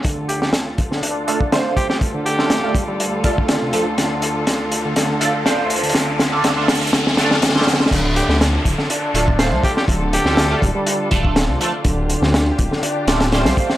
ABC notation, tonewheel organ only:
X:1
M:4/4
L:1/16
Q:1/4=122
K:Dm
V:1 name="Tonewheel organ" clef=bass
D,4 z3 D, D4 D, z3 | z D,3 D, A, G, G,3 G, z D, C, F, z | D,4 z3 D, D,4 z3 D, | D,4 D,4 D,2 D,2 D,2 D,2 |
D,4 z3 D, D4 D, z3 | z D,3 D, A, G, G,3 G, z D, C, F, z | D,4 z3 D, D4 D, z3 |]